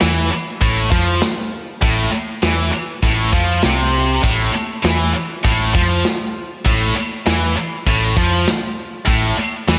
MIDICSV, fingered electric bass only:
0, 0, Header, 1, 3, 480
1, 0, Start_track
1, 0, Key_signature, 0, "minor"
1, 0, Tempo, 604230
1, 1446, Time_signature, 4, 2, 24, 8
1, 7776, End_track
2, 0, Start_track
2, 0, Title_t, "Fingered electric bass"
2, 0, Program_c, 0, 33
2, 15, Note_on_c, 0, 40, 86
2, 233, Note_off_c, 0, 40, 0
2, 490, Note_on_c, 0, 33, 91
2, 711, Note_off_c, 0, 33, 0
2, 731, Note_on_c, 0, 41, 94
2, 951, Note_off_c, 0, 41, 0
2, 1449, Note_on_c, 0, 33, 86
2, 1671, Note_off_c, 0, 33, 0
2, 1930, Note_on_c, 0, 40, 81
2, 2151, Note_off_c, 0, 40, 0
2, 2405, Note_on_c, 0, 33, 92
2, 2628, Note_off_c, 0, 33, 0
2, 2648, Note_on_c, 0, 41, 89
2, 2870, Note_off_c, 0, 41, 0
2, 2892, Note_on_c, 0, 36, 88
2, 3337, Note_off_c, 0, 36, 0
2, 3366, Note_on_c, 0, 33, 89
2, 3589, Note_off_c, 0, 33, 0
2, 3846, Note_on_c, 0, 40, 87
2, 4069, Note_off_c, 0, 40, 0
2, 4327, Note_on_c, 0, 33, 85
2, 4549, Note_off_c, 0, 33, 0
2, 4567, Note_on_c, 0, 41, 87
2, 4789, Note_off_c, 0, 41, 0
2, 5288, Note_on_c, 0, 33, 95
2, 5510, Note_off_c, 0, 33, 0
2, 5771, Note_on_c, 0, 40, 86
2, 5991, Note_off_c, 0, 40, 0
2, 6251, Note_on_c, 0, 33, 84
2, 6472, Note_off_c, 0, 33, 0
2, 6489, Note_on_c, 0, 41, 91
2, 6710, Note_off_c, 0, 41, 0
2, 7208, Note_on_c, 0, 33, 88
2, 7431, Note_off_c, 0, 33, 0
2, 7689, Note_on_c, 0, 40, 82
2, 7776, Note_off_c, 0, 40, 0
2, 7776, End_track
3, 0, Start_track
3, 0, Title_t, "Muted fingered electric bass strokes"
3, 2169, Note_on_c, 9, 29, 36
3, 2248, Note_off_c, 9, 29, 0
3, 4087, Note_on_c, 9, 29, 35
3, 4167, Note_off_c, 9, 29, 0
3, 6013, Note_on_c, 9, 29, 36
3, 6092, Note_off_c, 9, 29, 0
3, 7776, End_track
0, 0, End_of_file